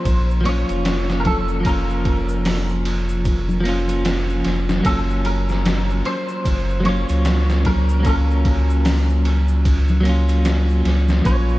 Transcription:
Already playing: clean electric guitar F3 A#3 C#4 F4 C5
0.05 sub bass A#1, kick, ride, shaker
0.30 shaker
0.41 clean electric guitar F3 A#3
0.45 clean electric guitar C#4 F4 C#5, ride, low conga
0.69 sub bass F1, ride, shaker
0.85 snare, ride, shaker
1.10 snare, shaker
1.20 clean electric guitar A#4
1.25 clean electric guitar A4, kick, ride, low conga
1.48 shaker
1.60 clean electric guitar F3 A#3
1.65 clean electric guitar C#4 F4 A#4, kick, ride, shaker
1.90 shaker
2.05 kick, ride
2.29 shaker
2.45 snare, open hi-hat, shaker
2.69 shaker
2.85 ride
3.09 shaker
3.25 kick, ride, shaker
3.49 low conga, shaker
3.60 clean electric guitar F3 A#3
3.65 clean electric guitar C#4 F4, ride
3.89 ride, shaker
4.05 snare, ride, shaker
4.29 shaker
4.45 sub bass F1, snare, ride
4.69 snare, low conga, shaker
4.81 clean electric guitar F#3 A#3
4.85 sub bass F#1, clean electric guitar C#4 A4, kick, ride, shaker
4.89 clean electric guitar F4
5.10 shaker
5.25 clean electric guitar A#4, ride
5.49 snare, shaker
5.65 snare, ride, low conga, shaker
5.90 shaker
6.05 clean electric guitar C5, ride
6.29 shaker
6.45 sub bass F#1, kick, ride, shaker
6.70 shaker
6.80 clean electric guitar F#3 A#3
6.85 clean electric guitar C#4 F4 C#5, ride, low conga
7.09 sub bass C#2, ride, shaker
7.25 snare, ride, shaker
7.50 snare, shaker
7.65 clean electric guitar A#4, kick, ride, low conga
7.89 shaker
8.00 clean electric guitar F#3 A#3
8.05 clean electric guitar C#4 A#4, kick, ride, shaker
8.09 clean electric guitar F4
8.30 shaker
8.45 kick, ride
8.70 shaker
8.85 snare, open hi-hat, shaker
9.10 shaker
9.25 ride
9.48 shaker
9.65 kick, ride, shaker
9.88 low conga, shaker
10.01 clean electric guitar F#3 A#3
10.05 clean electric guitar C#4, ride
10.09 clean electric guitar F4
10.29 ride, shaker
10.45 snare, ride, shaker
10.69 shaker
10.85 sub bass C#2, snare, ride
11.08 snare, low conga, shaker
11.21 sub bass A#1, clean electric guitar F3 A#3, kick, ride
11.26 clean electric guitar C#4 F4 C#5, shaker
11.49 shaker

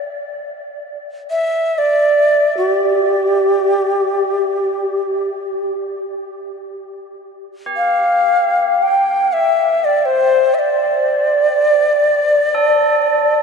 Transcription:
1.31 native american-style wooden flute E5
1.78 native american-style wooden flute D5
2.57 native american-style wooden flute F#4
2.69 native american-style wooden flute G4
7.66 tubular bells G4
7.77 native american-style wooden flute F5
8.82 native american-style wooden flute G5
9.33 native american-style wooden flute E5
9.85 native american-style wooden flute D5
10.05 native american-style wooden flute C5
10.54 native american-style wooden flute E5
10.59 native american-style wooden flute D5
12.55 tubular bells A4

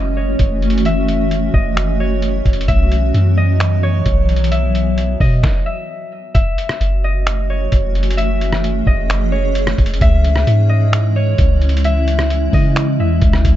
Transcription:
Already playing: 808-style bass F#1, ambient pad E3 A3 C#4 F#4, harp D#5
0.17 harp C#5
0.39 808-style bass F#1, kick, closed hi-hat
0.62 closed hi-hat
0.70 closed hi-hat
0.78 closed hi-hat
0.85 harp E5, closed hi-hat
1.08 closed hi-hat
1.31 closed hi-hat
1.54 808-style bass F#1, harp D#5, kick
1.77 finger snap, closed hi-hat
2.00 harp C#5
2.22 closed hi-hat
2.46 808-style bass F#1, kick, closed hi-hat
2.53 closed hi-hat
2.61 closed hi-hat
2.68 808-style bass B1, ambient pad E3 F#3 B3, harp E5, kick, closed hi-hat
2.92 closed hi-hat
3.14 808-style bass F#2, closed hi-hat
3.37 harp D#5
3.60 finger snap, closed hi-hat
3.83 harp C#5
4.06 808-style bass B1, kick, closed hi-hat
4.29 closed hi-hat
4.36 closed hi-hat
4.44 closed hi-hat
4.51 harp E5, closed hi-hat
4.75 closed hi-hat
4.98 closed hi-hat
5.20 808-style bass B2, harp D#5, kick, open hi-hat
5.43 kick, snare
5.66 harp E5
6.34 808-style bass F#1, ambient pad E3 A3 C#4 F#4, harp E5, kick, closed hi-hat
6.58 closed hi-hat
6.69 cross-stick
6.81 808-style bass F#1, closed hi-hat
7.04 harp D#5
7.27 finger snap, closed hi-hat
7.50 harp C#5
7.72 808-style bass F#1, kick, closed hi-hat
7.95 closed hi-hat
8.03 closed hi-hat
8.11 closed hi-hat
8.17 ambient pad G#4, harp E5, closed hi-hat
8.41 closed hi-hat
8.53 cross-stick
8.64 closed hi-hat
8.87 808-style bass F#1, harp D#5, kick
9.10 finger snap, closed hi-hat
9.32 harp C#5
9.55 closed hi-hat
9.67 cross-stick
9.78 808-style bass F#1, kick, closed hi-hat
9.86 closed hi-hat
9.94 closed hi-hat
10.01 808-style bass C#2, ambient pad E3 G#3 E4, harp E5, kick, closed hi-hat
10.24 closed hi-hat
10.36 cross-stick
10.47 808-style bass G#2, closed hi-hat
10.69 harp D#5
10.93 finger snap, closed hi-hat
11.16 harp C#5
11.38 808-style bass C#2, kick, closed hi-hat
11.62 closed hi-hat
11.69 closed hi-hat
11.77 closed hi-hat
11.84 harp E5, closed hi-hat
12.08 closed hi-hat
12.19 cross-stick
12.30 closed hi-hat
12.53 808-style bass C#3, harp D#5, kick, open hi-hat
12.76 finger snap, closed hi-hat
12.99 808-style bass E2, harp E5
13.22 808-style bass C#2, kick, closed hi-hat
13.33 cross-stick
13.45 808-style bass C#2, kick, closed hi-hat

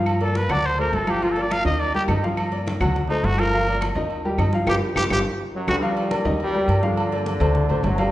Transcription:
Already playing: upright bass G2, upright piano F3 F4 F5
0.06 high conga, low agogo, claves
0.21 upright piano A#3 A#4 D5, trumpet A4, high conga, low agogo
0.35 trumpet B4, high conga, low agogo
0.49 upright bass D2, upright piano F#3 F#4 F#5, trumpet D5, high conga, low conga, low agogo, claves
0.64 trumpet C5, high conga
0.78 upright piano A3 A4 C5, trumpet A#4, high conga, low agogo
0.93 upright bass G1, trumpet A4, high conga, low timbale, low agogo
1.07 upright piano F3 F4 F5, trumpet G4, high conga, low agogo, claves
1.21 upright piano F3 F4 F5, trumpet F4, high conga, low agogo
1.31 trumpet A4
1.36 upright piano A#3 A#4 D5, high conga, low agogo
1.42 trumpet D5
1.50 trumpet F5, high conga, low agogo, claves
1.65 upright bass D#2, upright piano D#3 D#4 D#5, trumpet D#5, high conga
1.79 trumpet D5, high conga, low agogo
1.94 upright piano G3 G4 A#4, trumpet G4, high conga
2.08 upright bass G2, upright piano D#3 D#4 D#5, high conga, low timbale, low agogo, claves
2.23 upright piano F3 F4 F5, high conga
2.37 high conga, low agogo, claves
2.52 upright piano A#3 A#4 D5, high conga, low agogo
2.67 high conga, low agogo
2.80 upright bass D2, upright piano F#3 F#4 F#5, high conga, low conga, low agogo, claves
2.96 high conga, low conga
3.09 upright piano A3 A4 C5, trumpet D#4, high conga, low agogo
3.23 upright bass G1, trumpet F#4, high conga, low timbale, low agogo
3.38 upright piano F3 F4 F5, trumpet A#4, high conga, low agogo, claves
3.53 upright piano F3 F4 F5, high conga, low agogo
3.67 upright piano A#3 A#4 D5, high conga, low agogo
3.81 high conga, low agogo, claves
3.95 upright bass D#2, upright piano D#3 D#4 D#5, high conga
4.10 high conga, low agogo
4.25 upright piano G3 G4 A#4, high conga
4.38 upright bass G2, upright piano D#3 D#4 D#5, high conga, low agogo, claves
4.53 upright piano F3 F4 F5, high conga
4.67 upright bass G1, upright piano F4 G4 A#4, trumpet G4, high conga, high timbale, claves
4.95 upright bass G1, upright piano F4 G4 A#4, trumpet G4, high conga, high timbale, claves
5.10 upright bass G1, upright piano F4 G4 A#4, trumpet G4, high conga, high timbale, claves
5.54 trombone section F#2 F#3
5.68 upright bass D2, trombone section G2 G3, upright piano D4 F#4 A4, trumpet F#4, high conga, high timbale, claves
5.81 upright piano F3 F4 F5, high conga, low agogo
5.97 high conga, low agogo
6.11 upright piano A#3 A#4 D5, high conga, low agogo
6.25 upright bass D#2, upright piano D#3 D#4 D#5, high conga
6.40 trombone section G2 G3, high conga, low agogo
6.54 upright piano G3 G4 A#4, high conga
6.68 upright bass G2, high conga, low agogo
6.82 trombone section D3 D4, upright piano F3 F4 F5, high conga
6.97 high conga, low agogo
7.12 upright piano A#3 A#4 D5, high conga, low agogo
7.26 high conga, low agogo
7.40 upright bass D2, upright piano A3 A4 C5, high conga, low conga, low agogo
7.55 high conga, low conga
7.69 upright bass A1, upright piano A3 A4 C5, high conga, low agogo
7.83 upright bass G1, trombone section F#2 F#3, high conga, low timbale, low agogo
7.98 trombone section G2 G3, upright piano F3 F4 F5, high conga, low agogo

